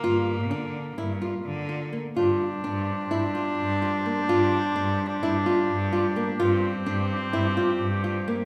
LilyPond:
<<
  \new Staff \with { instrumentName = "Nylon-string guitar" } { \time 9/8 \key c \dorian \tempo 4. = 85 f'4 d'4 e'8 f'4 f'8 bes8 | f'4 d'4 e'8 f'4 f'8 bes8 | f'4 d'4 e'8 f'4 f'8 bes8 | f'4 d'4 e'8 f'4 f'8 bes8 | }
  \new Staff \with { instrumentName = "Woodwind section" } { \time 9/8 \key c \dorian << { r1 r8 | <f g'>1~ <f g'>8~ | <f g'>1~ <f g'>8~ | <f g'>1~ <f g'>8 | } \\ { r1 r8 | c'1~ c'8~ | c'2~ c'16 d'2~ d'16~ | d'1~ d'8 | } >> }
  \new Staff \with { instrumentName = "Viola" } { \time 9/8 \key c \dorian bes1 r8 | d'1~ d'8~ | d'1~ d'8 | c'1~ c'8 | }
  \new Staff \with { instrumentName = "Cello" } { \clef bass \time 9/8 \key c \dorian g,4 d4 g,4 d4. | g,4 g,4 g,4 g,4. | g,4 g,4 g,4 g,4. | g,4 g,4 g,4 g,4. | }
>>